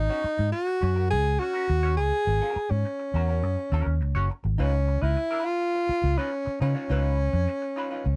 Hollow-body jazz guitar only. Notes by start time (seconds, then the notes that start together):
0.09 C#4 F#4 C#5
0.24 muted hollow-body jazz guitar stroke
0.39 muted hollow-body jazz guitar stroke
0.53 muted hollow-body jazz guitar stroke
0.67 muted hollow-body jazz guitar stroke
0.81 C#4 F#4 C#5
0.96 C#4 F#4 A#4
1.10 muted hollow-body jazz guitar stroke
1.25 muted hollow-body jazz guitar stroke
1.39 C#4 F#4 C#5
1.53 C#4 F#4 A#4
1.68 muted hollow-body jazz guitar stroke
1.83 C#4 F#4 C#5
1.98 muted hollow-body jazz guitar stroke
2.12 muted hollow-body jazz guitar stroke
2.27 muted hollow-body jazz guitar stroke
2.41 C#4 F#4 A#4
2.56 muted hollow-body jazz guitar stroke
2.71 muted hollow-body jazz guitar stroke
2.85 muted hollow-body jazz guitar stroke
3.00 muted hollow-body jazz guitar stroke
3.14 C#4 F#4 A#4
3.29 C#4 F#4 A#4
3.43 muted hollow-body jazz guitar stroke
3.58 muted hollow-body jazz guitar stroke
3.72 C#4 F#4 A#4
3.86 muted hollow-body jazz guitar stroke
4.01 muted hollow-body jazz guitar stroke
4.15 C#4 F#4 C#5
4.30 muted hollow-body jazz guitar stroke
4.44 muted hollow-body jazz guitar stroke
4.58 D#4 F4 B4
4.73 muted hollow-body jazz guitar stroke
4.87 muted hollow-body jazz guitar stroke
5.02 D#4 F4 B4
5.16 muted hollow-body jazz guitar stroke
5.31 D#4 F4 B4
5.45 muted hollow-body jazz guitar stroke
5.60 muted hollow-body jazz guitar stroke
5.75 muted hollow-body jazz guitar stroke
5.89 muted hollow-body jazz guitar stroke
6.18 D#4 F4 B4
6.32 muted hollow-body jazz guitar stroke
6.46 muted hollow-body jazz guitar stroke
6.60 D#4 F4 B4
6.75 D#4 F4 C#5
6.90 D#4 F4 B4
7.33 muted hollow-body jazz guitar stroke
7.48 muted hollow-body jazz guitar stroke
7.62 muted hollow-body jazz guitar stroke
7.76 D#4 F4 B4
7.91 D#4 F4 B4
8.05 muted hollow-body jazz guitar stroke